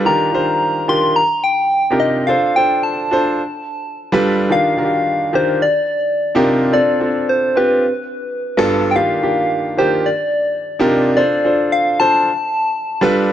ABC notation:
X:1
M:4/4
L:1/16
Q:"Swing 16ths" 1/4=108
K:Cdor
V:1 name="Soft synth lead"
b6 c'2 b2 g4 e2 | f2 g2 a8- a2 z2 | f6 c2 d8 | d4 c2 =B8 z3/2 g/2 |
f6 c2 d8 | d4 f2 a8 z2 |]
V:2 name="Grand piano"
[E,DFGB]2 [E,DFGc]3 z [E,DFGB]2 z4 z [C,DEFGB]3 | [DFAc]2 [DFAc]3 z [DFAc]2 z4 z [G,DFA=B]3 | [E,DFGB]2 [E,DF^FGB]3 z [E,D=FGB]2 z4 z [C,DEFGB]3 | [CDFA]2 [CDFA]3 z [CDFG]2 z4 z [G,,=B,DFA]3 |
[E,B,DFG]2 [E,B,DFG]3 z [E,B,DFG]2 z4 z [C,DEFGB]3 | [DFAc]2 [DFAc]3 z [DFAc]2 z4 z [G,DFA=B]3 |]